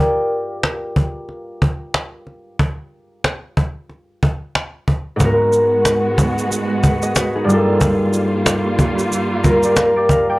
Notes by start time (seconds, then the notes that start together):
Already playing: A#3 F4 G4 A#4 D5 F5 G5
0.63 cajon slap
0.96 cajon bass
1.29 cajon slap
1.62 cajon bass
1.94 cajon slap
2.27 cajon slap
2.59 cajon bass
3.24 cajon slap
3.57 cajon bass, cajon slap
3.90 cajon slap
4.23 cajon bass
4.55 cajon slap
4.88 cajon bass
5.16 G#2 G#3
5.20 G#2 G#3 B3 F#4, cajon bass, shaker
5.25 A#4
5.53 cajon slap, shaker
5.85 cajon slap, shaker
6.18 cajon bass, shaker
6.38 shaker
6.50 cajon slap, shaker
6.83 B4 F#5, cajon bass, shaker
7.02 G#4 D#5, shaker
7.15 F#4 B4, cajon slap, shaker
7.35 D#4 G#4
7.44 G2 G3
7.49 G2 G3 A#3 F4, cajon slap, shaker
7.54 A4
7.81 cajon bass, shaker
8.13 cajon slap, shaker
8.46 cajon slap, shaker
8.79 cajon bass, cajon slap, shaker
8.99 shaker
9.11 cajon slap, shaker
9.43 F4 A#4, cajon bass, shaker
9.63 G4 D5, shaker
9.76 A#4 F5, cajon slap, shaker
9.96 G4 D5
10.09 A#4 F5, cajon bass, shaker
10.29 D5 G5